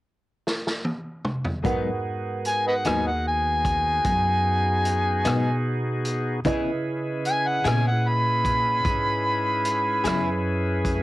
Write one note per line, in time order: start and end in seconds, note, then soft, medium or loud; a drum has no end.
0.47 snare soft
0.67 snare medium
0.85 high tom medium
1.25 mid tom medium
1.45 floor tom medium
1.63 1.88 G#2 medium
1.63 2.81 G#2 medium
1.63 1.89 F#3 medium
1.63 6.40 B3 medium
1.63 1.89 B3 medium
1.63 6.40 D#4 soft
1.63 6.40 F#4 medium
1.63 6.40 G#4 medium
1.63 6.40 A#4 soft
1.63 6.41 B4 soft
1.63 6.41 F#5 medium
1.63 kick medium
1.63 closed hi-hat medium
1.67 1.90 D#4 medium
2.45 2.65 G#5 medium
2.45 closed hi-hat medium
2.67 2.75 B4 soft
2.67 2.74 D#5 soft
2.67 2.89 F#5 medium
2.85 4.01 D#2 medium
2.85 3.10 G#2 soft
2.85 3.10 F#3 soft
2.85 3.10 B3 medium
2.85 3.09 D#4 medium
2.85 3.05 G#5 medium
2.85 cross-stick medium
2.85 closed hi-hat medium
3.07 3.25 F#5 medium
3.28 5.62 G#5 medium
3.65 kick medium
3.65 closed hi-hat soft
4.04 5.21 F#2 medium
4.04 kick medium
4.04 closed hi-hat medium
4.85 closed hi-hat soft
5.25 5.50 G#2 soft
5.25 6.41 B2 medium
5.25 5.49 F#3 soft
5.25 5.49 B3 medium
5.25 5.49 D#4 medium
5.25 cross-stick medium
5.25 closed hi-hat medium
6.05 closed hi-hat soft
6.45 7.61 C#3 medium
6.45 6.69 C#3 medium
6.45 6.69 B3 medium
6.45 11.03 C#4 medium
6.45 11.03 E4 soft
6.45 11.03 E4 medium
6.45 6.70 E4 medium
6.45 11.03 G#4 medium
6.45 6.70 G#4 medium
6.45 11.03 B4 medium
6.45 11.03 B4 soft
6.45 11.03 D#5 medium
6.45 kick medium
6.45 closed hi-hat medium
7.25 7.49 G#5 medium
7.25 closed hi-hat soft
7.47 7.69 F#5 medium
7.64 8.81 A#2 medium
7.64 7.90 C#3 soft
7.64 7.90 B3 medium
7.64 7.89 E4 medium
7.64 7.89 G#4 medium
7.64 7.85 G#5 medium
7.64 cross-stick medium
7.64 closed hi-hat medium
7.87 8.10 F#5 medium
8.09 10.43 B5 medium
8.45 kick medium
8.45 closed hi-hat soft
8.85 10.01 G#2 medium
8.85 kick medium
8.85 closed hi-hat medium
9.65 closed hi-hat medium
10.04 11.03 F#2 medium
10.04 10.30 C#3 soft
10.04 10.29 B3 soft
10.04 10.29 E4 medium
10.04 10.29 G#4 medium
10.04 cross-stick medium
10.04 closed hi-hat medium
10.85 kick medium
10.85 closed hi-hat soft
10.95 11.03 A3 medium
10.95 11.03 B3 medium